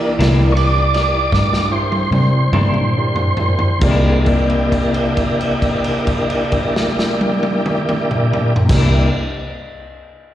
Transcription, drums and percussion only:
0.20 snare, ride
0.57 ride
0.94 snare, ride
1.32 kick, snare
1.53 snare
1.92 high tom
2.12 high tom
2.53 mid tom
2.74 mid tom
3.16 floor tom
3.37 floor tom
3.59 floor tom
3.81 kick, crash
4.26 kick, crash
4.50 crash
4.72 kick, crash
4.94 crash
5.17 kick, crash
5.41 crash
5.62 kick, crash
5.84 crash
6.07 kick, crash
6.30 crash
6.52 kick, crash
6.76 snare
6.99 snare
7.21 high tom
7.43 high tom
7.66 mid tom
7.89 mid tom
8.11 mid tom
8.33 mid tom
8.56 floor tom
8.69 kick, snare, crash

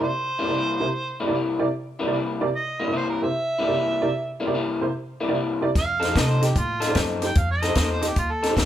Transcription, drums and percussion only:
5.75 kick, snare, closed hi-hat
6.02 snare, closed hi-hat
6.16 kick, snare, closed hi-hat
6.42 snare, closed hi-hat
6.56 kick, closed hi-hat
6.82 snare, closed hi-hat
6.95 kick, snare, closed hi-hat
7.22 snare, closed hi-hat
7.35 kick, closed hi-hat
7.62 snare, closed hi-hat
7.75 kick, snare, closed hi-hat
8.02 snare, closed hi-hat
8.16 kick, closed hi-hat
8.43 snare, closed hi-hat
8.57 kick, snare, closed hi-hat

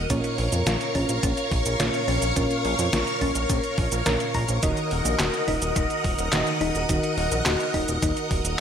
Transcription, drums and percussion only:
0.10 kick, closed hi-hat, cabasa
0.24 closed hi-hat, cabasa
0.38 open hi-hat
0.52 closed hi-hat, cabasa
0.67 snare, closed hi-hat, cabasa
0.81 closed hi-hat, cabasa
0.95 kick, open hi-hat
1.09 closed hi-hat, cabasa
1.23 kick, closed hi-hat, cabasa
1.37 closed hi-hat, cabasa
1.51 kick, open hi-hat
1.66 closed hi-hat, cabasa
1.80 snare, closed hi-hat, cabasa
1.94 closed hi-hat, cabasa
2.08 open hi-hat
2.22 closed hi-hat, cabasa
2.36 kick, closed hi-hat, cabasa
2.51 closed hi-hat, cabasa
2.65 open hi-hat
2.79 closed hi-hat, cabasa
2.93 snare, closed hi-hat, cabasa
3.07 closed hi-hat, cabasa
3.21 kick, open hi-hat
3.35 closed hi-hat, cabasa
3.50 kick, closed hi-hat, cabasa
3.64 closed hi-hat, cabasa
3.78 kick, open hi-hat
3.92 closed hi-hat, cabasa
4.06 snare, closed hi-hat, cabasa
4.20 closed hi-hat, cabasa
4.34 kick, open hi-hat
4.49 closed hi-hat, cabasa
4.63 kick, closed hi-hat, cabasa
4.77 closed hi-hat, cabasa
4.91 open hi-hat
5.05 closed hi-hat, cabasa
5.19 snare, clap, closed hi-hat, cabasa
5.34 closed hi-hat, cabasa
5.48 kick, open hi-hat
5.62 closed hi-hat, cabasa
5.76 kick, closed hi-hat, cabasa
5.90 closed hi-hat, cabasa
6.04 kick, open hi-hat
6.19 closed hi-hat, cabasa
6.33 snare, clap, closed hi-hat, cabasa
6.47 closed hi-hat, cabasa
6.61 open hi-hat
6.75 closed hi-hat, cabasa
6.89 kick, closed hi-hat, cabasa
7.03 closed hi-hat, cabasa
7.18 open hi-hat
7.32 closed hi-hat, cabasa
7.46 snare, clap, closed hi-hat, cabasa
7.60 closed hi-hat, cabasa
7.74 kick, open hi-hat
7.88 closed hi-hat, cabasa
8.02 kick, closed hi-hat, cabasa
8.17 closed hi-hat, cabasa
8.31 kick, open hi-hat
8.45 closed hi-hat, cabasa

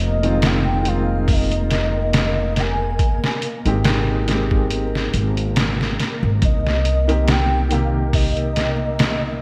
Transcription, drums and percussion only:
0.00 closed hi-hat
0.23 closed hi-hat
0.42 snare, closed hi-hat
0.85 closed hi-hat
1.28 kick, open hi-hat
1.51 closed hi-hat
1.71 snare, closed hi-hat
2.13 snare, closed hi-hat
2.56 snare, closed hi-hat
2.99 kick, closed hi-hat
3.24 snare
3.42 closed hi-hat
3.66 closed hi-hat
3.85 snare, closed hi-hat
4.28 snare, closed hi-hat
4.51 kick
4.70 closed hi-hat
4.95 snare
5.14 closed hi-hat
5.37 closed hi-hat
5.56 snare, closed hi-hat
5.81 snare
6.00 snare, closed hi-hat
6.42 kick, closed hi-hat
6.67 snare
6.85 closed hi-hat
7.09 closed hi-hat
7.28 snare, closed hi-hat
7.71 closed hi-hat
8.13 kick, open hi-hat
8.37 closed hi-hat
8.56 snare, closed hi-hat
8.99 snare, closed hi-hat

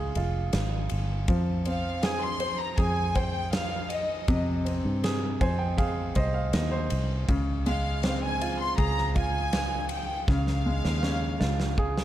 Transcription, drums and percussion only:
0.15 ride
0.53 snare, ride
0.89 ride
1.28 kick, ride
1.65 ride
2.03 snare, ride
2.40 ride
2.78 kick, ride
3.15 kick, ride
3.53 snare, ride
3.90 ride
4.28 kick, ride
4.66 ride
5.04 snare, ride
5.41 kick, ride
5.78 kick, ride
6.15 kick, ride
6.53 snare, ride
6.90 ride
7.29 kick, ride
7.66 ride
8.03 snare, ride
8.41 ride
8.78 kick, ride
8.98 snare
9.16 kick, ride
9.53 snare, ride
9.89 ride
10.28 kick, snare
10.47 snare
10.85 snare
11.03 snare
11.41 snare
11.60 snare
11.78 kick
11.97 snare

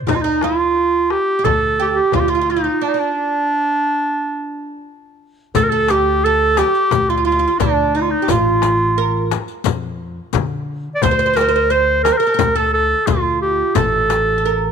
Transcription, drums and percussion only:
0.07 darbuka dum, frame drum
0.41 darbuka tek, frame drum
0.76 darbuka ka
1.10 darbuka tek
1.44 darbuka dum, frame drum
2.12 darbuka dum, frame drum
5.55 riq, darbuka dum, frame drum
5.88 riq, darbuka tek, frame drum
6.57 riq, darbuka tek, frame drum
6.75 riq
6.91 riq, darbuka dum, frame drum
7.09 darbuka ka
7.60 riq, frame drum, darbuka dum
8.28 riq, darbuka dum, frame drum
8.62 riq, darbuka tek, frame drum
9.31 riq, darbuka tek, frame drum
9.48 riq
9.64 riq, darbuka dum, frame drum
9.83 darbuka ka
10.33 riq, darbuka dum, frame drum
11.02 riq, darbuka dum, frame drum
11.36 riq, darbuka tek, frame drum
12.05 riq, darbuka tek, frame drum
12.23 riq
12.39 riq, frame drum, darbuka dum
13.07 riq, frame drum, darbuka dum
13.75 riq, frame drum, darbuka dum
14.10 riq, darbuka tek, frame drum
14.44 riq, darbuka ka

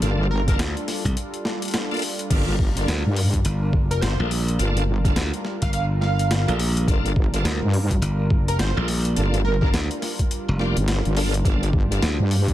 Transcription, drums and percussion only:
0.02 closed hi-hat
0.48 kick, closed hi-hat
0.59 snare, closed hi-hat
0.77 closed hi-hat
0.88 snare, open hi-hat
1.05 kick, closed hi-hat
1.17 closed hi-hat
1.34 closed hi-hat
1.45 snare
1.62 closed hi-hat
1.65 closed hi-hat
1.68 closed hi-hat
1.71 snare, closed hi-hat
1.74 closed hi-hat
1.91 closed hi-hat
1.94 closed hi-hat
1.97 closed hi-hat
1.99 closed hi-hat, open hi-hat
2.19 closed hi-hat
2.30 kick, closed hi-hat, crash
2.59 kick
2.77 closed hi-hat
2.88 snare, closed hi-hat
3.16 open hi-hat
3.33 kick, closed hi-hat
3.45 closed hi-hat
3.73 kick
3.91 closed hi-hat
4.02 snare, closed hi-hat
4.31 open hi-hat
4.48 closed hi-hat
4.59 closed hi-hat
4.77 closed hi-hat
5.05 kick, closed hi-hat
5.16 snare, closed hi-hat
5.34 closed hi-hat
5.45 snare
5.62 kick, closed hi-hat
5.73 closed hi-hat
6.02 snare
6.19 closed hi-hat
6.31 snare, closed hi-hat
6.48 closed hi-hat
6.59 open hi-hat
6.77 closed hi-hat
6.88 kick, closed hi-hat
7.06 closed hi-hat
7.16 kick
7.34 closed hi-hat
7.45 snare, closed hi-hat
7.74 open hi-hat
7.91 kick, closed hi-hat
8.02 closed hi-hat
8.30 kick
8.48 closed hi-hat
8.59 snare, closed hi-hat
8.88 open hi-hat
9.05 closed hi-hat
9.16 closed hi-hat
9.34 closed hi-hat
9.62 kick
9.74 snare, closed hi-hat
9.91 closed hi-hat
10.02 snare, open hi-hat
10.19 kick, closed hi-hat
10.31 closed hi-hat
10.59 snare
10.77 closed hi-hat
10.88 snare, closed hi-hat
11.05 closed hi-hat
11.17 open hi-hat
11.34 closed hi-hat
11.45 kick, closed hi-hat
11.63 closed hi-hat
11.73 kick
11.92 closed hi-hat
12.02 snare, closed hi-hat
12.31 open hi-hat
12.48 kick, closed hi-hat

